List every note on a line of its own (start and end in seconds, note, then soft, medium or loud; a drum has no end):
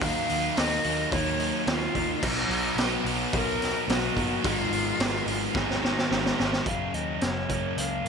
0.00 0.21 D#2 medium
0.00 0.55 D#3 medium
0.00 2.20 F#3 medium
0.00 0.30 F#3 loud
0.00 0.56 A#3 medium
0.00 0.30 A#3 loud
0.00 0.85 C#4 medium
0.00 0.29 D#4 loud
0.00 2.21 F5 medium
0.00 0.58 F5 loud
0.00 2.18 C#6 medium
0.00 kick loud
0.00 open hi-hat loud
0.29 0.50 D#2 medium
0.29 0.57 F#3 medium
0.29 0.57 A#3 medium
0.29 0.58 D#4 medium
0.29 open hi-hat medium
0.56 0.77 D#2 loud
0.56 1.10 D#3 medium
0.56 0.86 F#3 medium
0.56 0.84 A#3 medium
0.56 0.83 D#4 medium
0.56 1.14 D#5 loud
0.56 snare loud
0.56 open hi-hat medium
0.84 1.05 D#2 medium
0.84 1.11 F#3 medium
0.84 1.11 A#3 medium
0.84 1.13 D#4 medium
0.84 open hi-hat medium
1.11 1.51 D#2 loud
1.11 1.66 D#3 medium
1.11 1.41 F#3 loud
1.11 1.39 A#3 loud
1.11 1.39 D#4 loud
1.11 1.68 C#5 loud
1.11 kick loud
1.11 open hi-hat medium
1.40 1.68 F#3 medium
1.40 1.68 A#3 medium
1.40 1.69 D#4 medium
1.40 open hi-hat medium
1.67 1.87 D#2 medium
1.67 2.22 D#3 medium
1.67 1.98 F#3 medium
1.67 1.96 A#3 medium
1.67 2.24 C#4 medium
1.67 1.96 D#4 medium
1.67 2.25 F4 medium
1.67 snare loud
1.67 open hi-hat medium
1.94 2.14 D#2 medium
1.94 2.24 F#3 medium
1.94 2.22 A#3 medium
1.94 2.24 D#4 medium
1.94 kick medium
1.94 open hi-hat medium
2.23 2.43 B1 medium
2.23 2.77 B2 loud
2.23 2.51 F#3 loud
2.23 2.51 B3 loud
2.23 2.82 D#4 medium
2.23 2.49 D#4 loud
2.23 4.43 D#5 medium
2.23 4.43 A#5 medium
2.23 kick loud
2.23 crash loud
2.49 2.69 B1 medium
2.49 2.79 F#3 medium
2.49 2.80 B3 medium
2.49 2.81 D#4 medium
2.49 open hi-hat medium
2.75 2.96 B1 medium
2.75 3.32 B2 medium
2.75 3.08 F#3 medium
2.75 snare loud
2.75 open hi-hat medium
2.80 3.07 B3 medium
2.80 3.06 D#4 medium
2.80 3.07 F#4 medium
3.05 3.25 B1 medium
3.05 3.33 F#3 medium
3.05 3.34 B3 medium
3.05 3.33 D#4 medium
3.05 open hi-hat medium
3.33 3.73 B1 medium
3.33 3.88 B2 medium
3.33 3.62 F#3 loud
3.33 3.61 B3 medium
3.33 3.60 D#4 loud
3.33 3.91 A#4 loud
3.33 kick loud
3.33 open hi-hat medium
3.61 3.89 F#3 medium
3.61 3.89 B3 medium
3.61 3.89 D#4 medium
3.61 snare soft
3.61 open hi-hat medium
3.88 4.08 B1 medium
3.88 4.43 B2 medium
3.88 4.18 F#3 medium
3.88 4.15 B3 medium
3.88 4.14 D#4 medium
3.88 4.48 F#4 loud
3.88 snare loud
3.88 open hi-hat medium
4.16 4.36 G1 medium
4.16 4.44 F#3 medium
4.16 4.46 A#3 medium
4.16 4.43 B3 medium
4.16 4.43 D#4 medium
4.16 kick medium
4.16 open hi-hat medium
4.43 4.64 G#1 medium
4.43 5.00 G#2 loud
4.43 4.97 D#3 loud
4.43 4.72 F#3 medium
4.43 4.72 G#3 loud
4.43 4.71 B3 medium
4.43 4.70 D#4 loud
4.43 5.59 F4 loud
4.43 6.64 G#4 medium
4.43 6.64 G#5 medium
4.43 kick loud
4.43 open hi-hat medium
4.71 4.91 G#1 medium
4.71 5.26 F#3 medium
4.71 4.99 G#3 medium
4.71 4.99 B3 medium
4.71 5.00 D#4 medium
4.71 open hi-hat medium
4.98 5.19 G#1 medium
4.98 5.53 G#2 medium
4.98 5.54 D#3 medium
4.98 5.28 G#3 medium
4.98 5.26 B3 medium
4.98 5.25 D#4 medium
4.98 snare loud
4.98 open hi-hat medium
5.26 5.47 G#1 medium
5.26 5.54 D#3 medium
5.26 5.53 F#3 medium
5.26 5.54 G#3 medium
5.26 5.54 B3 medium
5.26 5.55 D#4 medium
5.26 open hi-hat medium
5.53 5.94 G#1 loud
5.53 6.10 G#2 medium
5.53 6.08 D#3 loud
5.53 6.66 F#3 medium
5.53 5.84 G#3 loud
5.53 5.83 B3 loud
5.53 5.81 D#4 loud
5.53 6.40 D#4 medium
5.53 kick loud
5.53 snare medium
5.70 snare medium
5.83 6.09 G#3 medium
5.83 6.10 B3 medium
5.83 6.10 D#4 medium
5.83 snare medium
5.98 snare medium
6.09 6.31 G#1 medium
6.09 6.63 G#2 medium
6.09 6.64 D#3 medium
6.09 6.37 G#3 medium
6.09 6.37 B3 medium
6.09 6.36 D#4 medium
6.09 snare medium
6.26 snare medium
6.37 6.59 G#1 medium
6.37 6.65 D#3 medium
6.37 6.65 G#3 medium
6.37 6.65 B3 medium
6.37 6.64 D#4 medium
6.37 snare loud
6.53 snare loud
6.64 6.90 F#1 medium
6.64 7.47 F#2 medium
6.64 7.47 C#3 medium
6.64 7.50 F#3 medium
6.64 7.48 A#3 medium
6.64 7.48 C#4 loud
6.64 kick loud
6.64 closed hi-hat medium
6.68 6.96 F5 medium
6.94 7.18 D#2 medium
6.94 7.25 D#5 medium
6.94 closed hi-hat medium
7.21 7.46 F#1 medium
7.21 8.08 C#4 medium
7.21 7.80 C#5 medium
7.21 snare loud
7.21 closed hi-hat medium
7.49 7.73 F#1 medium
7.49 8.08 F#2 medium
7.49 8.08 C#3 medium
7.49 8.08 F#3 medium
7.49 8.08 A#3 medium
7.49 8.08 C#4 medium
7.49 kick medium
7.49 closed hi-hat medium
7.77 8.01 C#2 medium
7.77 8.08 F5 loud
7.77 closed hi-hat medium
8.05 8.08 A#1 medium
8.05 8.08 A#3 medium